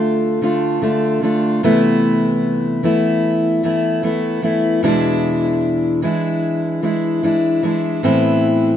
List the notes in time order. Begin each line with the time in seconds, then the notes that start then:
Already playing: D3 A3 D4 F4
0.41 D3 A3 D4 F4
0.82 D3 A3 D4 F4
1.22 D3 A3 D4 F4
1.63 C3 E3 A3 B3 E4
2.83 E3 A3 B3 E4
3.63 E3 A3 B3 E4
4.03 E3 A3 B3 E4
4.42 E3 A3 B3 E4
4.83 E2 B2 E3 G#3 D4 E4
6.02 E3 G#3 D4 E4
6.83 E3 G#3 D4 E4
7.23 E3 G#3 D4 E4
7.63 E3 G#3 D4 E4
8.03 A2 E3 B3 C4 E4